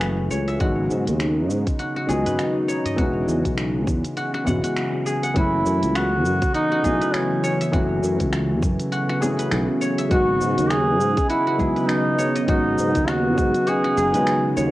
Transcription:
Already playing: F#1 C#3 E3 F#3 A3 B3 C#4 E4 F#4 G#4 B4
0.01 finger snap, closed hi-hat, cabasa
0.31 C#2 C#5, cabasa
0.48 E5, closed hi-hat, cabasa
0.59 G#1 C#3 D#3 F#3 G#3 B3 F#4, kick, closed hi-hat, cabasa
0.90 G#2, cabasa
1.00 D#4
1.07 D#2, closed hi-hat, cabasa
1.20 finger snap, closed hi-hat, cabasa
1.50 G#2, cabasa
1.67 kick, closed hi-hat, cabasa
1.79 F#4, closed hi-hat, cabasa
1.96 F#4
2.07 C#2 D#3 F#3 G#3 B3 G#4, cabasa
2.11 F#4
2.26 B4, closed hi-hat, udu, cabasa
2.39 finger snap, closed hi-hat, cabasa
2.68 C#5, cabasa
2.85 D#5, closed hi-hat, udu, cabasa
2.96 E1 E3 G#3 B3 C#4 F#4, kick, closed hi-hat, cabasa
3.00 F#4
3.28 E2 F#3, cabasa
3.34 B3
3.45 B1, kick, closed hi-hat, cabasa
3.58 finger snap, closed hi-hat, cabasa
3.87 E2, kick, cabasa
4.05 closed hi-hat, cabasa
4.17 F#4, closed hi-hat, cabasa
4.34 F#4, finger snap
4.45 E1 E3 G#3 B3 C#4 F#5, udu, cabasa
4.49 F#4
4.64 F#4, closed hi-hat, cabasa
4.77 finger snap, closed hi-hat, cabasa
5.06 G#4, cabasa
5.23 F#5, closed hi-hat, cabasa
5.34 F#1 E3 F#3 A3 C#4 E4 F#4, kick, closed hi-hat, cabasa
5.38 F#4
5.65 F#2, cabasa
5.83 C#2, closed hi-hat, cabasa
5.95 F#4, finger snap, closed hi-hat, cabasa
6.05 E3
6.25 F#2, cabasa
6.42 kick, closed hi-hat, cabasa
6.54 D#4 F#4, closed hi-hat, cabasa
6.72 F#4
6.83 B1 E3 F#3 A3 C#4 F#4 G#4, kick, cabasa
7.01 B4, closed hi-hat, cabasa
7.14 C#4, finger snap, closed hi-hat, cabasa
7.44 C#5, cabasa
7.61 E5, closed hi-hat, cabasa
7.72 F#1 E3 F#3 A3 C#4 F#4, kick, closed hi-hat, cabasa
8.03 F#2, cabasa
8.20 C#2, kick, closed hi-hat, cabasa
8.33 finger snap, closed hi-hat, cabasa
8.62 F#2, kick, cabasa
8.79 closed hi-hat, cabasa
8.92 F#4, closed hi-hat, cabasa
9.09 F#4, finger snap
9.20 E3 F#3 A3 C#4 F#4 G#4, cabasa
9.39 B4, closed hi-hat, cabasa
9.51 B1, finger snap, closed hi-hat, cabasa
9.81 C#5, cabasa
9.98 E5, closed hi-hat, cabasa
10.09 G#1 D#3 F#3 G#3 B3 F#4, kick, closed hi-hat, cabasa
10.40 G#2, cabasa
10.58 D#2 D#5, closed hi-hat, cabasa
10.70 G#4, finger snap, closed hi-hat, cabasa
11.00 G#2, cabasa
11.17 kick, closed hi-hat, cabasa
11.29 E4 F#4, closed hi-hat, cabasa
11.47 F#4
11.58 C#2 D#3 F#3 G#3 B3 G#4, kick, cabasa
11.62 F#4
11.76 B4, closed hi-hat, cabasa
11.89 D#4, finger snap, closed hi-hat, cabasa
12.19 C#5, cabasa
12.36 D#5, closed hi-hat, cabasa
12.47 G#1 D#3 F#3 G#3 B3 D#4 F#4, kick, closed hi-hat, cabasa
12.78 G#2, cabasa
12.95 D#2, kick, closed hi-hat, cabasa
13.08 F#4, finger snap, closed hi-hat, cabasa
13.38 G#2, kick, cabasa
13.54 closed hi-hat, cabasa
13.67 F#4 G#4, closed hi-hat, cabasa
13.84 F#4, finger snap
13.97 F#1 G#4, cabasa
14.13 D#3 F#3 G#3 B3 F#4 B4, closed hi-hat, cabasa
14.27 finger snap, closed hi-hat, cabasa
14.57 D#2 C#5, cabasa

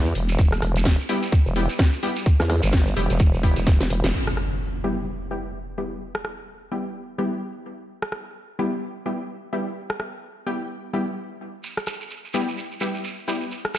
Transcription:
Already playing: E2
0.06 shekere
0.15 E1, open hi-hat
0.29 closed hi-hat, shekere
0.39 E1, kick, closed hi-hat, shekere
0.52 cross-stick, shekere
0.62 E1, cross-stick, open hi-hat
0.76 closed hi-hat, shekere
0.85 kick, snare, closed hi-hat, shekere
1.00 shekere
1.09 G3 B3 E4 G4, open hi-hat
1.23 closed hi-hat, shekere
1.32 kick, closed hi-hat, shekere
1.46 E1, shekere
1.56 G3 B3 E4 G4, open hi-hat
1.70 closed hi-hat, shekere
1.79 kick, snare, closed hi-hat, shekere
1.93 shekere
2.03 G3 B3 E4 G4, open hi-hat
2.16 closed hi-hat, shekere
2.26 kick, closed hi-hat, shekere
2.40 E2, cross-stick, snare, shekere
2.50 cross-stick, open hi-hat
2.63 G1, closed hi-hat, shekere
2.72 kick, snare, closed hi-hat, shekere
2.87 shekere
2.96 E1 G3 B3 E4 G4, open hi-hat
3.10 E1, closed hi-hat, shekere
3.19 kick, closed hi-hat, shekere
3.34 shekere
3.43 G3 B3 E4 G4, kick, open hi-hat
3.56 E1, closed hi-hat, shekere
3.66 kick, snare, closed hi-hat, shekere
3.80 E1, snare, shekere
3.90 E1, open hi-hat
4.04 E1, snare, closed hi-hat, shekere
4.14 crash, impact
4.27 cross-stick
4.37 cross-stick
4.84 G3 B3 E4 G4
5.31 G3 B3 E4 G4
5.78 G3 B3 E4 G4
6.15 cross-stick
6.25 cross-stick
6.72 G3 B3 E4 G4
7.18 G3 B3 E4 G4
8.02 cross-stick
8.12 cross-stick
8.59 G3 B3 E4 G4
9.06 G3 B3 E4 G4
9.53 G3 B3 E4 G4
9.90 cross-stick
10.00 cross-stick
10.46 G3 B3 E4 G4
10.93 G3 B3 E4 G4
11.64 shekere
11.77 cross-stick, shekere
11.87 cross-stick, shekere
12.01 shekere
12.10 shekere
12.25 shekere
12.34 G3 B3 E4 G4, shekere
12.48 shekere
12.57 shekere
12.71 shekere
12.80 G3 B3 E4 G4, shekere
12.94 shekere
13.04 shekere
13.19 shekere
13.28 G3 B3 E4 G4, shekere
13.41 shekere
13.51 shekere
13.65 cross-stick, shekere
13.74 cross-stick, shekere

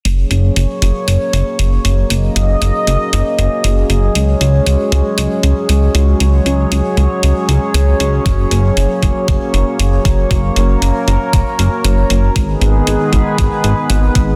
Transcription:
0.05 F#1 F#3 A#3 C#4 G#4 C#5, closed hi-hat
0.31 F#1, closed hi-hat
0.56 F#1, closed hi-hat
0.82 F#1, closed hi-hat
1.08 F#1, closed hi-hat
1.33 F#1, closed hi-hat
1.59 F#1, closed hi-hat
1.85 F#1, closed hi-hat
2.10 F#1 D#5, closed hi-hat
2.36 F#1, closed hi-hat
2.62 F#1, closed hi-hat
2.87 F#1, closed hi-hat
3.13 F#1, closed hi-hat
3.39 F#1, closed hi-hat
3.64 F#1, closed hi-hat
3.90 F#1, closed hi-hat
4.15 C#2 G#3 C#5, closed hi-hat
4.41 C#2, closed hi-hat
4.67 C#2, closed hi-hat
4.92 C#2, closed hi-hat
5.18 C#2, closed hi-hat
5.43 C#2, closed hi-hat
5.69 C#2, closed hi-hat
5.95 C#2, closed hi-hat
6.20 C#2, closed hi-hat
6.46 C#2, closed hi-hat
6.72 C#2, closed hi-hat
6.97 C#2, closed hi-hat
7.23 C#2, closed hi-hat
7.49 C#2, closed hi-hat
7.74 C#2, closed hi-hat
8.00 C#2, closed hi-hat
8.26 F#1 A#3, kick, closed hi-hat
8.51 F#1, closed hi-hat
8.77 F#1, closed hi-hat
9.03 F#1, kick, closed hi-hat
9.28 F#1, kick, closed hi-hat
9.54 F#1, closed hi-hat
9.79 F#1, closed hi-hat
10.05 F#1, kick, closed hi-hat
10.31 F#1 A#4, kick, closed hi-hat
10.56 F#1, closed hi-hat
10.82 F#1, closed hi-hat
11.08 F#1, closed hi-hat
11.33 F#1, kick, closed hi-hat
11.59 F#1, closed hi-hat
11.85 F#1, closed hi-hat
12.10 F#1, closed hi-hat
12.36 G#1 D#3 G#3 B3 G#4 B4, kick, closed hi-hat
12.61 G#1, closed hi-hat
12.87 G#1, closed hi-hat
13.13 G#1, kick, closed hi-hat
13.38 G#1, kick, closed hi-hat
13.64 G#1, closed hi-hat
13.90 G#1, closed hi-hat
14.15 G#1, kick, closed hi-hat

